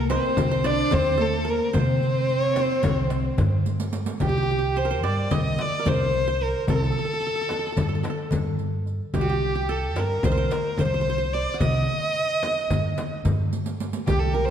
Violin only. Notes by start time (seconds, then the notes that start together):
Already playing: A#4
0.11 C5
0.66 D5
0.94 C5
1.22 A4
1.50 A#4
1.77 C5
2.43 C#5
2.61 C5
2.81 C#5
2.98 C5
4.24 G4
4.78 C5
5.05 D5
5.34 D#5
5.61 D5
5.89 C5
6.43 A#4
6.70 A4
9.17 G4
9.71 A4
9.99 A#4
10.25 C5
10.52 A#4
10.81 C5
11.33 D5
11.60 D#5
14.06 G4
14.19 A4
14.33 A#4
14.45 C5